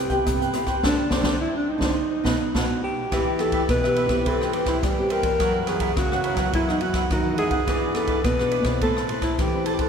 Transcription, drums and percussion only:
0.10 kick, closed hi-hat
0.26 kick, cross-stick, closed hi-hat
0.42 closed hi-hat
0.53 cross-stick, closed hi-hat
0.66 kick, cross-stick, closed hi-hat
0.83 kick, snare
1.11 kick, snare
1.24 kick, snare
1.81 kick, snare
2.25 kick, snare
2.55 kick, snare
3.12 kick, cross-stick, ride
3.39 cross-stick, ride
3.52 kick, ride
3.69 kick, cross-stick, ride
3.84 cross-stick
3.96 ride
4.09 kick, cross-stick, ride
4.26 kick, ride
4.41 cross-stick
4.53 ride
4.66 kick, cross-stick, ride
4.83 kick, cross-stick, ride
5.10 ride
5.23 kick, ride
5.40 kick, cross-stick, ride
5.67 cross-stick, ride
5.80 kick, ride
5.97 kick, cross-stick, ride
6.12 cross-stick
6.24 ride
6.37 kick, cross-stick, ride
6.53 kick, ride
6.69 cross-stick
6.81 ride
6.94 kick, cross-stick, ride
7.10 kick, cross-stick, ride
7.38 ride
7.51 kick, ride
7.67 kick, cross-stick, ride
7.95 cross-stick, ride
8.07 kick, ride
8.24 kick, cross-stick, ride
8.39 cross-stick
8.51 ride
8.64 kick, cross-stick, ride
8.81 kick, ride
8.96 cross-stick
9.09 ride
9.22 kick, cross-stick, ride
9.39 kick, cross-stick, ride
9.66 ride
9.79 kick, ride

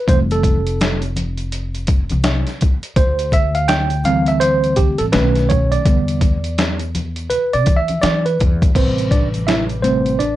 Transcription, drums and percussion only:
0.08 kick, closed hi-hat, shaker
0.31 closed hi-hat, shaker
0.43 kick, closed hi-hat, shaker
0.67 closed hi-hat, shaker
0.80 snare, closed hi-hat, shaker
1.02 closed hi-hat, shaker
1.16 closed hi-hat, high conga, low conga, shaker
1.37 closed hi-hat, shaker
1.52 closed hi-hat, shaker
1.75 closed hi-hat, shaker
1.87 kick, closed hi-hat, shaker
2.09 closed hi-hat, high conga, shaker
2.23 snare, closed hi-hat, shaker
2.47 snare, closed hi-hat, shaker
2.61 kick, closed hi-hat, low conga, shaker
2.83 closed hi-hat, shaker
2.96 kick, closed hi-hat, shaker
3.19 closed hi-hat, shaker
3.32 kick, closed hi-hat, shaker
3.55 closed hi-hat, shaker
3.68 snare, closed hi-hat, shaker
3.90 closed hi-hat, shaker
4.04 closed hi-hat, high conga, low conga, shaker
4.26 closed hi-hat, shaker
4.41 closed hi-hat, shaker
4.64 closed hi-hat, shaker
4.76 kick, closed hi-hat, shaker
4.98 closed hi-hat, high conga, shaker
5.13 snare, closed hi-hat, shaker
5.35 snare, closed hi-hat, shaker
5.50 kick, closed hi-hat, low conga, shaker
5.72 closed hi-hat, shaker
5.85 kick, closed hi-hat, shaker
6.08 closed hi-hat, shaker
6.21 kick, closed hi-hat, shaker
6.44 closed hi-hat, shaker
6.58 snare, closed hi-hat, shaker
6.79 closed hi-hat, shaker
6.95 closed hi-hat, high conga, low conga, shaker
7.16 closed hi-hat, shaker
7.30 closed hi-hat, low conga, shaker
7.53 closed hi-hat, shaker
7.66 kick, closed hi-hat, shaker
7.88 closed hi-hat, high conga, shaker
8.02 snare, closed hi-hat, shaker
8.26 closed hi-hat, shaker
8.40 kick, closed hi-hat, low conga, shaker
8.62 kick, closed hi-hat, shaker
8.75 kick, closed hi-hat, crash, shaker
8.98 closed hi-hat, shaker
9.11 kick, closed hi-hat, shaker
9.34 closed hi-hat, high conga, shaker
9.48 snare, closed hi-hat, shaker
9.69 closed hi-hat, shaker
9.84 closed hi-hat, low conga, shaker
10.06 closed hi-hat, shaker
10.20 closed hi-hat, low conga, shaker

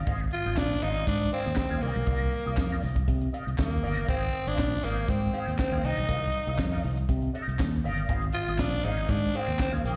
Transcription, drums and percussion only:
0.07 kick, closed hi-hat
0.31 closed hi-hat
0.46 closed hi-hat
0.57 kick, snare, clap
0.82 open hi-hat
0.96 closed hi-hat
1.07 kick, closed hi-hat
1.33 closed hi-hat
1.46 snare, closed hi-hat
1.56 kick, snare, clap
1.83 open hi-hat
1.96 closed hi-hat
2.07 kick, closed hi-hat
2.31 closed hi-hat
2.47 closed hi-hat
2.57 kick, snare, clap
2.82 open hi-hat
2.96 kick, closed hi-hat
3.08 kick, closed hi-hat
3.21 closed hi-hat
3.34 closed hi-hat
3.48 closed hi-hat
3.58 kick, snare, clap
3.85 open hi-hat
3.98 closed hi-hat
4.09 kick, closed hi-hat
4.33 closed hi-hat
4.48 closed hi-hat
4.58 kick, snare, clap
4.83 open hi-hat
4.97 closed hi-hat
5.08 kick, closed hi-hat
5.34 closed hi-hat
5.48 closed hi-hat
5.58 kick, snare, clap
5.85 open hi-hat
5.98 closed hi-hat
6.09 kick, closed hi-hat
6.22 closed hi-hat
6.33 closed hi-hat
6.48 closed hi-hat
6.58 kick, snare, clap
6.83 open hi-hat
6.97 closed hi-hat
7.09 kick, closed hi-hat
7.22 closed hi-hat
7.35 closed hi-hat
7.49 closed hi-hat
7.59 kick, snare, clap
7.73 closed hi-hat
7.86 open hi-hat
7.98 closed hi-hat
8.09 kick, closed hi-hat
8.22 closed hi-hat
8.32 closed hi-hat
8.48 closed hi-hat
8.58 kick, snare, clap
8.84 open hi-hat
8.98 closed hi-hat
9.09 kick, closed hi-hat
9.22 closed hi-hat
9.35 closed hi-hat
9.49 closed hi-hat
9.59 kick, snare, clap
9.73 closed hi-hat
9.85 open hi-hat

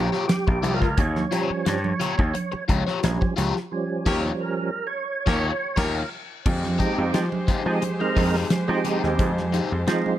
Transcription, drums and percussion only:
0.13 snare
0.29 snare, closed hi-hat, muted conga, high conga
0.48 kick, muted conga
0.63 closed hi-hat, high conga
0.82 kick, snare
0.97 kick, closed hi-hat, low conga
1.16 snare, high conga
1.32 closed hi-hat
1.66 snare, closed hi-hat, muted conga
1.84 muted conga, high conga
2.00 snare, closed hi-hat, low conga
2.19 kick
2.35 closed hi-hat, high conga
2.52 muted conga
2.69 kick, closed hi-hat, high conga
2.88 snare
3.03 snare, closed hi-hat, muted conga, high conga
3.22 kick, muted conga
3.37 closed hi-hat, high conga
3.56 snare
4.06 kick, snare, crash
5.27 kick, snare
5.77 kick, snare, crash
6.46 kick, crash, muted conga, low conga
6.64 snare, high conga
6.80 kick, closed hi-hat
7.14 snare, closed hi-hat, muted conga
7.32 muted conga, high conga
7.48 kick, snare, closed hi-hat, low conga
7.82 closed hi-hat, muted conga, high conga
8.01 muted conga
8.17 kick, open hi-hat, high conga
8.35 snare
8.50 snare, closed hi-hat, high conga
8.85 closed hi-hat, high conga, low conga
9.03 snare
9.19 kick, closed hi-hat, muted conga, low conga
9.38 snare, high conga
9.54 closed hi-hat
9.88 snare, closed hi-hat, muted conga
10.06 high conga

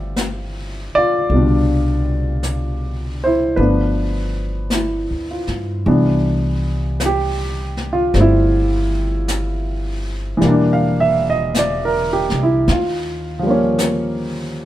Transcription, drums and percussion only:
0.16 brush sweep, snare, hi-hat pedal
1.29 brush sweep
2.43 brush sweep, snare, hi-hat pedal
3.57 brush sweep
4.70 brush sweep, snare, hi-hat pedal
5.47 snare
5.85 brush sweep
7.00 brush sweep, snare, hi-hat pedal
7.77 snare
8.14 brush sweep, snare
9.28 brush sweep, snare, hi-hat pedal
10.41 brush sweep, snare
11.54 brush sweep, snare, hi-hat pedal
12.30 snare
12.68 brush sweep, snare
13.79 brush sweep, snare, hi-hat pedal

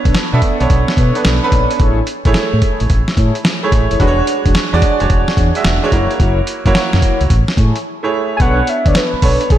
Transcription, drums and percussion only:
0.05 kick, closed hi-hat
0.15 snare, closed hi-hat
0.42 kick, closed hi-hat
0.60 closed hi-hat
0.70 kick, closed hi-hat
0.88 snare
0.97 kick, closed hi-hat
1.15 closed hi-hat
1.25 snare, closed hi-hat
1.52 kick, closed hi-hat
1.71 closed hi-hat
1.80 kick, closed hi-hat
2.07 closed hi-hat
2.25 kick, closed hi-hat
2.34 snare, closed hi-hat
2.62 kick, closed hi-hat
2.80 closed hi-hat
2.90 kick, closed hi-hat
3.08 snare
3.17 kick, closed hi-hat
3.35 closed hi-hat
3.45 snare, closed hi-hat
3.72 kick, closed hi-hat
3.91 closed hi-hat
4.00 kick, closed hi-hat
4.27 closed hi-hat
4.46 kick, closed hi-hat
4.55 snare, closed hi-hat
4.82 kick, closed hi-hat
5.00 closed hi-hat
5.10 kick, closed hi-hat
5.28 snare
5.37 kick, closed hi-hat
5.55 closed hi-hat
5.65 snare, closed hi-hat
5.92 kick, closed hi-hat
6.11 closed hi-hat
6.20 kick, closed hi-hat
6.47 closed hi-hat
6.66 kick, closed hi-hat
6.75 snare, closed hi-hat
6.93 snare
7.02 kick, closed hi-hat
7.21 closed hi-hat
7.30 kick, closed hi-hat
7.48 snare
7.57 kick, closed hi-hat
7.76 closed hi-hat
8.40 kick, closed hi-hat
8.67 closed hi-hat
8.86 kick, closed hi-hat
8.95 snare, closed hi-hat
9.22 kick, open hi-hat
9.41 closed hi-hat
9.50 kick, closed hi-hat

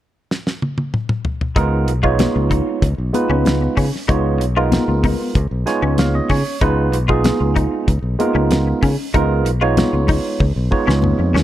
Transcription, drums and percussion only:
0.31 snare
0.47 snare
0.62 high tom
0.78 high tom
0.94 mid tom
1.09 mid tom
1.25 floor tom
1.41 floor tom
1.56 kick, closed hi-hat, muted conga
1.88 closed hi-hat
2.04 kick
2.19 snare, closed hi-hat, muted conga, high conga
2.51 kick, closed hi-hat
2.82 kick, closed hi-hat, muted conga
3.14 closed hi-hat, muted conga, high conga
3.45 snare, closed hi-hat, high conga
3.77 kick, open hi-hat
3.96 snare
4.09 kick, closed hi-hat, muted conga
4.41 closed hi-hat
4.72 snare, closed hi-hat, muted conga, high conga, low conga
5.04 kick, open hi-hat, high conga, low conga
5.35 kick, closed hi-hat
5.67 snare, closed hi-hat, muted conga
5.98 snare, closed hi-hat, high conga
6.30 kick, open hi-hat
6.61 kick, closed hi-hat
6.93 closed hi-hat
7.09 kick
7.24 snare, closed hi-hat, muted conga, high conga
7.56 kick, closed hi-hat
7.88 kick, closed hi-hat, muted conga
8.20 closed hi-hat, muted conga, high conga
8.51 snare, closed hi-hat, high conga
8.83 kick, open hi-hat
9.14 kick, closed hi-hat, muted conga
9.46 closed hi-hat
9.77 snare, closed hi-hat, muted conga, high conga, low conga
10.08 kick, open hi-hat, high conga, low conga
10.40 kick, high tom, muted conga
10.71 kick, muted conga
10.89 snare
11.02 mid tom, high conga
11.36 snare

